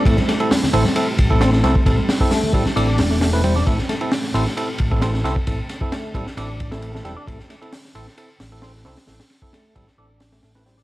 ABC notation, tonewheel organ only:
X:1
M:4/4
L:1/16
Q:1/4=133
K:Am
V:1 name="Tonewheel organ"
A, z A, z3 C z4 z C z C z | z4 A,2 G, z D3 A, A, A, G, D | A, z A, z3 C z4 z C z C z | z4 A,2 G, z D3 A, A, A, G, D |
A, z A, z3 C z4 z C z C z | z4 A,2 G, z D3 A, A, A, G, D |]